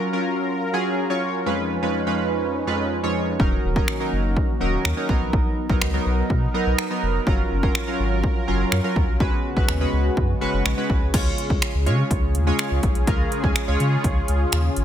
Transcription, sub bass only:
3.40 D#1
3.64 D#1
4.12 F#1
4.61 D#1
4.85 D#2
5.09 B1
5.21 A#1
5.33 B1
5.70 A#1
5.82 C#2
6.06 B1
6.30 B2
6.66 B1
7.03 F1
7.27 F#1
7.51 F#1
7.99 G#1
8.48 F#1
8.72 F#2
8.96 D#2
9.08 B1
9.20 C#2
9.57 B1
9.69 D#2
9.93 C#2
10.17 F#2
10.41 F#1
10.53 F#1
10.65 A#1
10.90 B1
11.02 C#2
11.14 C#2
11.50 C#2
11.74 C#2
11.87 C#3
12.11 C#2
12.35 D#2
12.71 C#2
12.83 A#1
12.95 B1
13.07 C#2
13.44 C#2
13.68 C#2
13.80 C#3
14.04 C#2
14.28 C#2
14.53 D#2
14.77 G#1

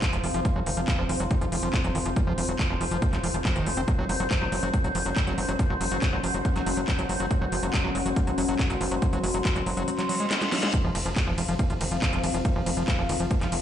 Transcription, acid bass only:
0.02 D#3
0.13 F3
0.24 F3
0.34 F3
0.45 F3
0.56 F#3
0.66 D#3
0.77 F3
0.88 F3
0.99 F3
1.09 F3
1.20 F#3
1.31 D#3
1.41 F3
1.52 F3
1.63 F3
1.74 F3
1.84 F#3
1.95 D#3
2.06 F3
2.16 F3
2.27 F3
2.38 F3
2.49 F#3
2.59 D#3
2.70 F3
2.81 F3
2.91 F3
3.02 F3
3.13 F#3
3.24 F3
3.34 F3
3.45 F3
3.56 D#3
3.66 C4
3.77 C4
3.88 F#3
3.99 F#3
4.09 F#3
4.20 F#3
4.31 F3
4.41 F#3
4.52 F#3
4.63 F#3
4.74 F#3
4.84 F#3
4.95 F3
5.06 F#3
5.16 F#3
5.27 F#3
5.38 F#3
5.49 F#3
5.59 F3
5.70 F#3
5.81 F#3
5.91 F#3
6.02 F#3
6.13 F#3
6.24 F3
6.34 F#3
6.45 F#3
6.56 F#3
6.66 F#3
6.77 F#3
6.88 F3
6.99 F#3
7.09 F#3
7.20 F#3
7.31 F#3
7.41 F#3
7.52 F3
7.63 F#3
7.74 F#3
7.84 F#3
7.95 F#3
8.06 F#3
8.16 F3
8.27 F#3
8.38 F#3
8.49 F#3
8.59 F#3
8.70 F#3
8.81 F3
8.91 F#3
9.02 F#3
9.13 F#3
9.23 F#3
9.34 F#3
9.45 F3
9.56 F#3
9.66 F#3
9.77 F#3
9.88 F#3
9.99 F#3
10.09 F#3
10.20 G#3
10.31 G#3
10.41 G#3
10.52 F#3
10.63 G#3
10.73 F3
10.84 F3
10.95 F3
11.06 F3
11.16 D#3
11.27 F3
11.38 F3
11.49 F3
11.59 F3
11.70 F3
11.81 D#3
11.91 F3
12.02 F3
12.13 F3
12.23 F3
12.34 F3
12.45 D#3
12.56 F3
12.66 F3
12.77 F3
12.88 F3
12.98 F3
13.09 D#3
13.20 F3
13.31 F3
13.41 F3
13.52 F3

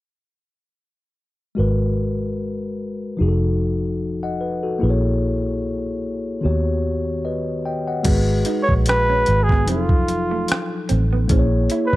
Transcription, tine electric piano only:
1.55 G#3 F#4 A#4
1.60 B4
3.17 F3 D#4 F#4
3.22 G#4
3.28 A4
4.23 D#5 F#5
4.41 B4
4.63 F#4 A4
4.79 A#3 E4 G#4
4.84 B4
4.90 C#5
6.41 D#3 B3 F#4 G4
6.45 C#5
7.25 B4 D#5
7.65 D#5 G5
7.88 D#5 F#5
8.03 G#3 F#4 G#4
8.08 B4
9.66 F3 F#3 D#4
9.70 G4
9.76 A4
11.28 A#3 E4 G#4
11.32 C5
11.39 C#5

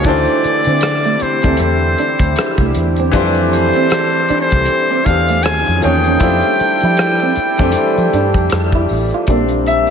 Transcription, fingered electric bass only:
0.05 D2
0.45 muted fingered electric bass stroke
0.67 D3
1.22 muted fingered electric bass stroke
1.45 D2
1.60 E2
2.20 D2
2.58 C2
2.76 E2
3.14 F2
4.30 muted fingered electric bass stroke
4.53 C2
5.07 E2
5.46 D#2
5.68 F2
5.85 E2
6.21 F2
6.61 muted fingered electric bass stroke
6.83 F3
7.37 muted fingered electric bass stroke
7.60 F2
7.98 F3
8.13 G2
8.35 F2
8.52 F2
8.91 A1
9.28 A#1

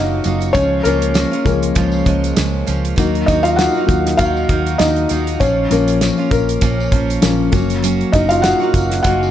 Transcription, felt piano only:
Already playing: F#3 A#3 C#4 D#4 F4 F#4 D#5 F5 F#5
0.53 C#4 C#5
0.83 A#3 A#4
1.45 F3 G#3 A#3 C#4 A#4
2.98 F#3 A#3 D#4
3.26 D#4 D#5
3.43 F4 F5
3.56 F#4 F#5
3.86 F#3 A#3 D#4
4.17 F#4 F5
4.78 D#4 D#5
5.40 C#4 C#5
5.70 F3 A#3 C#4 A#4
6.31 A#3 A#4
7.22 F3 A#3 C#4
7.52 F#3 A#3 C#4
8.12 D#4 D#5
8.29 F4 F5
8.42 F#4 F#5
9.03 F#4 F#5

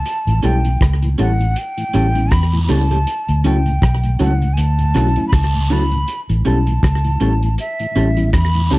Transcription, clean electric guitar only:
0.43 C#4 G4 A4
1.18 C#4 G4 A4
1.94 C#4 G4 A4
2.69 C#4 G4 A4
2.90 C#4 G4 A4
3.44 C#4 F#4 A4
4.19 C#4 F#4 A4
4.95 C#4 F#4 A4
5.70 C#4 F#4 A4
6.45 C#4 G4 A4
7.20 C#4 G4 A4
7.96 C#4 G4 A4
8.71 C#4 G4 A4

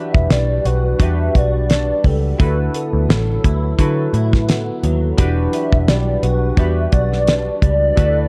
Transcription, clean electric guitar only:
Already playing: E3 F#3 D4
0.31 G3
0.65 F#4
1.01 G3
1.35 F#4
1.70 D4
2.05 G3
2.40 D3
2.74 B3
3.10 F#3
3.45 E4
3.79 F#3
4.14 E4
4.48 B3
4.84 F#3
5.19 E3
5.54 D4
5.89 G3
6.23 F#4
6.58 G3
6.93 F#4
7.28 D4
7.62 G3
7.97 D3

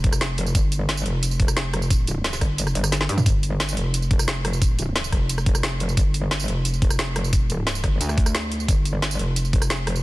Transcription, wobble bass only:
Already playing: F1
0.55 G1
1.06 F1
2.41 G1
2.75 G1
3.09 G2
3.26 G1
3.77 F1
5.12 F1
5.97 G1
6.48 F1
7.45 D#1
7.84 G1
8.01 D2
8.68 G1
9.19 F1

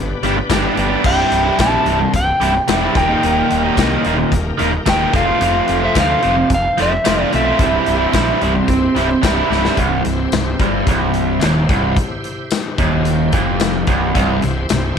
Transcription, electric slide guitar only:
Already playing: D5
1.06 G5
1.61 A5
2.16 G5
2.97 G5
4.89 G5
5.16 F5
5.85 E5
6.00 F5
6.54 F5
6.82 E5
7.35 E5

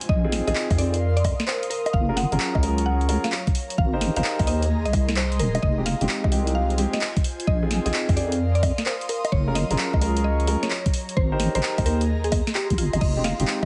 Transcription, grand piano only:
0.24 C4 D#4 F4 G#4
0.47 C4 D#4 F4 G#4
0.78 C4 D#4 F4 G#4
2.09 C#4 F4 G#4 A#4
2.32 C#4 F4 G#4 A#4
2.63 C#4 F4 G#4 A#4
3.09 C#4 F4 G#4 A#4
3.93 D#4 G4 A#4 C5
4.16 D#4 G4 A#4 C5
4.47 D#4 G4 A#4 C5
5.78 G#3 C4 D#4 G4
6.01 G#3 C4 D#4 G4
6.32 G#3 C4 D#4 G4
6.78 G#3 C4 D#4 G4
7.63 C4 D#4 F4 G#4
7.86 C4 D#4 F4 G#4
8.17 C4 D#4 F4 G#4
9.47 C#4 F4 G#4 A#4
9.71 C#4 F4 G#4 A#4
10.02 C#4 F4 G#4 A#4
10.48 C#4 F4 G#4 A#4
11.32 D#4 G4 A#4 C5
11.55 D#4 G4 A#4 C5
11.86 D#4 G4 A#4 C5
13.17 G#3 C4 D#4 G4
13.40 G#3 C4 D#4 G4

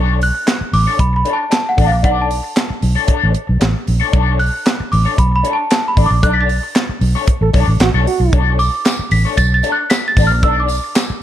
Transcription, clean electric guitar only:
Already playing: D4 A4 C#5
0.35 muted clean electric guitar stroke
0.46 muted clean electric guitar stroke
0.60 muted clean electric guitar stroke
0.87 D4 A4 C#5
0.99 muted clean electric guitar stroke
1.13 muted clean electric guitar stroke
1.25 D4 A4 C#5
1.39 muted clean electric guitar stroke
1.50 muted clean electric guitar stroke
1.65 muted clean electric guitar stroke
1.77 D4 A4 D5
1.91 muted clean electric guitar stroke
2.03 D4 A4 D5
2.43 muted clean electric guitar stroke
2.56 muted clean electric guitar stroke
2.69 muted clean electric guitar stroke
2.95 D4 A4 C#5
3.07 D4 A4 C#5
3.34 muted clean electric guitar stroke
3.47 muted clean electric guitar stroke
3.60 muted clean electric guitar stroke
3.74 muted clean electric guitar stroke
4.00 D4 A4 C#5
4.12 D4 A4 C#5
4.53 muted clean electric guitar stroke
4.66 muted clean electric guitar stroke
4.79 muted clean electric guitar stroke
5.05 D4 A4 C#5
5.17 muted clean electric guitar stroke
5.32 muted clean electric guitar stroke
5.43 D4 A4 C#5
5.59 muted clean electric guitar stroke
5.72 muted clean electric guitar stroke
5.85 muted clean electric guitar stroke
5.97 D4 A4 D5
6.12 muted clean electric guitar stroke
6.23 D4 A4 D5
6.63 muted clean electric guitar stroke
6.76 muted clean electric guitar stroke
6.90 muted clean electric guitar stroke
7.15 D4 A4 C#5
7.28 muted clean electric guitar stroke
7.42 muted clean electric guitar stroke
7.53 D4 A4 C#5
7.68 muted clean electric guitar stroke
7.80 muted clean electric guitar stroke
7.94 D4 A4 C#5
8.07 muted clean electric guitar stroke
8.20 muted clean electric guitar stroke
8.33 D4 A4 C#5
8.74 muted clean electric guitar stroke
8.86 muted clean electric guitar stroke
8.99 muted clean electric guitar stroke
9.25 D4 A4 C#5
9.38 muted clean electric guitar stroke
9.52 muted clean electric guitar stroke
9.63 D4 A4 C#5
9.78 muted clean electric guitar stroke
9.90 muted clean electric guitar stroke
10.05 muted clean electric guitar stroke
10.18 D4 A4 D5
10.32 muted clean electric guitar stroke
10.44 D4 A4 D5
10.84 muted clean electric guitar stroke
10.95 muted clean electric guitar stroke
11.10 muted clean electric guitar stroke

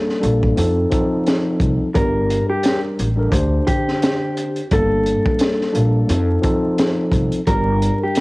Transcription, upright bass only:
0.23 A#1
0.58 F2
1.60 C2
1.96 G1
2.99 A1
3.32 D2
4.71 G1
5.75 A#1
6.10 F2
7.12 C2
7.47 G1

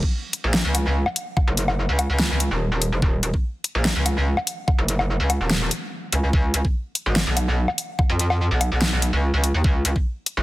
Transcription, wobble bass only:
0.44 A#1
0.65 C#2
1.48 F#1
1.89 C#2
2.10 C#2
2.51 D#1
2.72 D#1
2.92 F1
3.02 D#1
3.23 D#1
3.75 A#1
3.96 C#2
4.79 F#1
5.20 C#2
5.41 D#1
6.13 C#2
6.33 C#2
6.54 C#2
7.06 G#1
7.27 B1
8.10 F2
8.51 B1
8.72 B1
9.13 C#2
9.34 C#2
9.54 D#2
9.64 C#2
9.85 C#2
10.37 G#1

